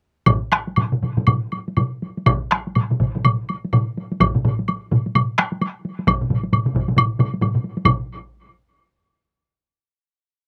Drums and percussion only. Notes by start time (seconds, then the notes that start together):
0.26 taiko, taiko low-mid, taiko mid, taiko high, high woodblock
0.52 taiko rim, taiko high
0.67 taiko high
0.76 taiko low-mid, taiko mid, taiko high, high woodblock
0.92 taiko low-mid, taiko mid
1.03 taiko low-mid, taiko mid, taiko high
1.17 taiko low-mid, taiko mid, taiko high
1.27 taiko low-mid, taiko mid, taiko high, high woodblock
1.52 taiko high, high woodblock
1.68 taiko high
1.77 taiko low-mid, taiko mid, taiko high, high woodblock
2.02 taiko high
2.17 taiko high
2.26 taiko, taiko low-mid, taiko mid, taiko high, high woodblock
2.51 taiko rim, taiko high
2.67 taiko high
2.75 taiko low-mid, taiko mid, taiko high, high woodblock
2.91 taiko low-mid, taiko mid
3.00 taiko, taiko low-mid, taiko mid, taiko high
3.15 taiko low-mid, taiko mid, taiko high
3.24 taiko low-mid, taiko mid, taiko high, high woodblock
3.49 taiko high, high woodblock
3.65 taiko high
3.73 taiko low-mid, taiko mid, taiko high, high woodblock
3.97 taiko high
4.12 taiko high
4.20 taiko, taiko low-mid, taiko mid, taiko high, high woodblock
4.35 taiko low-mid, taiko mid
4.45 taiko low-mid, taiko mid, taiko high
4.59 taiko high
4.68 taiko high, high woodblock
4.92 taiko low-mid, taiko mid, taiko high
5.06 taiko high
5.15 taiko low-mid, taiko mid, taiko high, high woodblock
5.38 taiko rim, taiko high, high woodblock
5.52 taiko high
5.61 taiko high, high woodblock
5.85 taiko high
5.99 taiko high
6.07 taiko, taiko low-mid, taiko mid, taiko high, high woodblock
6.21 taiko low-mid, taiko mid
6.30 taiko low-mid, taiko mid, taiko high
6.43 taiko high
6.53 taiko low-mid, taiko mid, taiko high, high woodblock
6.66 taiko low-mid, taiko mid
6.75 taiko, taiko low-mid, taiko mid
6.88 taiko low-mid, taiko mid, taiko high
6.97 taiko low-mid, taiko mid, taiko high, high woodblock
7.19 taiko low-mid, taiko mid, taiko high, high woodblock
7.34 taiko high
7.41 taiko low-mid, taiko mid, taiko high, high woodblock
7.54 taiko low-mid, taiko mid
7.64 taiko high
7.77 taiko high
7.85 taiko, taiko low-mid, taiko mid, taiko high, high woodblock